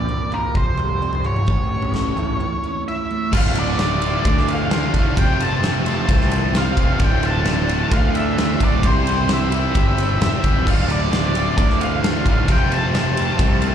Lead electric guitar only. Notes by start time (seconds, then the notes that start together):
Already playing: D5
0.34 A#4
0.57 C5
1.26 C#5
2.88 E5
3.34 F5
3.59 D5
4.28 D5
4.51 F5
5.19 G5
5.42 A5
6.58 F5
7.04 G5
7.26 A5
7.93 F5
8.16 E5
8.64 D5
8.87 C5
9.33 E5
10.22 E5
10.68 F5
10.92 D5
11.58 D5
11.82 F5
12.52 G5
12.73 A5